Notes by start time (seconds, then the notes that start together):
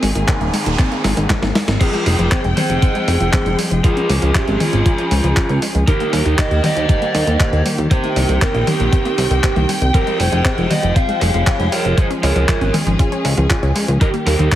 Already playing: D#3 A#3 C4 G#4, noise sweep
0.03 G#1 G#3, open hi-hat
0.15 G#1 D#3, closed hi-hat
0.28 C4, kick, clap, closed hi-hat
0.41 D#1 A#3, closed hi-hat
0.53 G#3, open hi-hat
0.66 D#1 D#3, closed hi-hat
0.79 C4, kick, clap, closed hi-hat
0.92 A#3, closed hi-hat
1.04 G#1 G#3, snare, open hi-hat
1.17 G#1 D#3, closed hi-hat
1.30 C4, kick, snare, clap, closed hi-hat
1.42 G#1 A#3, snare, closed hi-hat
1.55 G#3, snare, open hi-hat
1.68 G#1 D#3, snare, closed hi-hat
1.81 F3 G#3 C4 F4 G#4 G5, kick, closed hi-hat, crash
1.93 G#3, closed hi-hat
2.06 F1 G3 F4 G#4, open hi-hat
2.19 F1 F3, closed hi-hat
2.31 C4 G#4 C5, kick, clap, closed hi-hat
2.44 F1 G#3, closed hi-hat
2.57 G3 G#4 C5, open hi-hat, high tom
2.69 F1 F3, closed hi-hat
2.82 C4, kick, closed hi-hat
2.95 G#3, closed hi-hat
3.08 F1 G3, open hi-hat
3.20 F1 F3, closed hi-hat
3.33 C4, kick, clap, closed hi-hat
3.46 F1 G#3, closed hi-hat
3.59 G3, open hi-hat
3.71 F1 F3, closed hi-hat
3.84 C#4 F4 G#4, kick, closed hi-hat
3.97 C#4, closed hi-hat
4.09 C#2 G#3, open hi-hat
4.22 C#2 F3, closed hi-hat
4.35 C#4 F4 G4, kick, clap, closed hi-hat
4.48 G#1 C#4, closed hi-hat
4.60 G#3 C#4 F4, open hi-hat, high tom
4.73 G#1 F3, closed hi-hat
4.86 F4, kick, closed hi-hat
4.98 C#4, closed hi-hat
5.11 C#2 G#3, open hi-hat
5.24 C#2 F3, closed hi-hat
5.37 F4, kick, clap, closed hi-hat
5.49 C#2 C#4, closed hi-hat
5.62 G#3, open hi-hat
5.75 C#2 F3, closed hi-hat
5.87 D#3 G3 A#3 D#4 G4 A#4, kick, closed hi-hat
6.00 A#3, closed hi-hat
6.13 D#2 G3 G4 A#4, open hi-hat
6.26 D#2 D#3, closed hi-hat
6.38 D#4 A#4 D#5, kick, clap, closed hi-hat
6.51 D#2 A#3, closed hi-hat
6.64 G3 C5 D#5, open hi-hat, high tom
6.76 D#2 D#3, closed hi-hat
6.89 D#4, kick, closed hi-hat
7.02 A#3, closed hi-hat
7.14 D#2 G3, open hi-hat
7.27 D#2 D#3, closed hi-hat
7.40 D#4, kick, clap, closed hi-hat
7.53 D#2 A#3, closed hi-hat
7.65 G3, open hi-hat
7.78 D#2 D#3, closed hi-hat
7.91 C4 G4 C5 G5, kick, closed hi-hat
8.04 A#3, closed hi-hat
8.16 C2 G3, open hi-hat
8.29 C2 D#3, closed hi-hat
8.42 C4 G4 A#4, kick, clap, closed hi-hat
8.54 A#1 A#3, closed hi-hat
8.67 G3 D#4 G4, open hi-hat, high tom
8.80 A#1 D#3, closed hi-hat
8.93 C4, kick, closed hi-hat
9.05 A#3, closed hi-hat
9.18 C2 G3, open hi-hat
9.31 C2 D#3, closed hi-hat
9.43 C4, kick, clap, closed hi-hat
9.56 C2 A#3, closed hi-hat, high tom
9.69 G3, open hi-hat
9.81 C2 D#3, closed hi-hat
9.94 C3 F3 G#3 C4 G4 A#4, kick, closed hi-hat
10.07 G#3, closed hi-hat
10.20 F1 G3 G#4 C5, open hi-hat
10.32 F1 F3, closed hi-hat
10.45 C4, kick, clap, closed hi-hat
10.58 F1 G#3, closed hi-hat
10.71 G3 C5 D#5, open hi-hat, high tom
10.83 F1 F3, closed hi-hat
10.96 C4 C5 F5, kick, closed hi-hat
11.09 G#3, closed hi-hat
11.21 F1 G3 C#5 F5, open hi-hat
11.34 F1 F3, closed hi-hat
11.47 C4, kick, clap, closed hi-hat
11.59 F1 G#3, closed hi-hat
11.72 G3 A#4 C#5, open hi-hat
11.85 F1 F3, closed hi-hat
11.98 C#4 F4 G#4 C5, kick, closed hi-hat
12.10 C#4, closed hi-hat
12.23 C#2 G#3 A#4 C#5, open hi-hat
12.36 C#2 F3, closed hi-hat
12.48 F4, kick, clap, closed hi-hat
12.61 G#1 C#4, closed hi-hat
12.74 G#3, open hi-hat, high tom
12.87 G#1 F3, closed hi-hat
12.99 F4, kick, closed hi-hat
13.12 C#4, closed hi-hat
13.25 C#2 G#3, open hi-hat
13.37 C#2 F3, closed hi-hat
13.50 F4, kick, clap, closed hi-hat
13.63 C#2 C#4, closed hi-hat
13.76 G#3, open hi-hat
13.88 C#2 F3, closed hi-hat
14.01 D#3 G3 A#3 D#4 G4 A#4, kick, closed hi-hat
14.14 A#3, closed hi-hat
14.26 D#2 G3 G4 A#4, open hi-hat
14.39 D#2 D#3, closed hi-hat
14.52 D#4, kick, clap, closed hi-hat